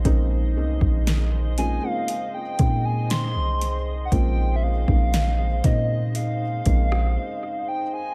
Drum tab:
HH |x---x-x-x-x-x-x-|x---x-x-x-x-----|
SD |----o-------o---|----o------r----|
BD |o--o------o-----|o--o--o---o-----|